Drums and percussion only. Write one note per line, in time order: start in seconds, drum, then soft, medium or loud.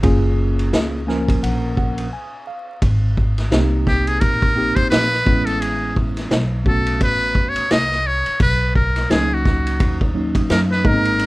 0.03 kick loud
0.03 ride medium
0.59 ride medium
0.73 snare loud
0.73 hi-hat pedal soft
0.73 ride medium
1.09 snare soft
1.28 kick loud
1.28 ride medium
1.44 ride medium
1.77 kick medium
1.98 ride medium
2.82 kick loud
2.82 ride medium
3.17 kick medium
3.38 snare soft
3.38 ride medium
3.52 snare loud
3.52 hi-hat pedal soft
3.52 ride medium
3.87 kick medium
3.87 snare soft
4.07 ride medium
4.21 kick medium
4.21 ride medium
4.42 kick medium
4.76 kick medium
4.76 ride medium
4.92 snare loud
4.92 hi-hat pedal medium
4.92 ride medium
5.13 snare soft
5.26 kick loud
5.47 ride medium
5.62 ride medium
5.96 kick medium
6.17 snare soft
6.17 ride medium
6.31 snare loud
6.31 hi-hat pedal soft
6.31 ride medium
6.66 kick medium
6.86 ride medium
7.01 kick loud
7.01 ride medium
7.35 kick medium
7.56 ride medium
7.71 snare loud
7.71 hi-hat pedal medium
7.71 ride medium
7.92 snare soft
8.26 ride medium
8.40 kick loud
8.40 ride medium
8.75 kick medium
8.96 snare soft
8.96 ride medium
9.10 snare loud
9.10 hi-hat pedal soft
9.10 ride medium
9.45 kick medium
9.45 snare soft
9.67 ride medium
9.80 kick loud
9.80 ride medium
10.01 kick medium
10.35 kick medium
10.35 ride medium
10.50 snare loud
10.50 hi-hat pedal medium
10.50 ride medium
10.71 snare soft
10.85 kick loud
11.05 ride medium
11.19 ride medium